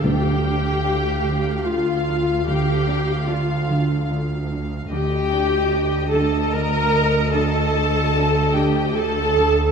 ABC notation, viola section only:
X:1
M:3/4
L:1/8
Q:1/4=74
K:Fmix
V:1 name="Viola section"
G4 F2 | G2 F2 z2 | G3 A B2 | A3 G A2 |]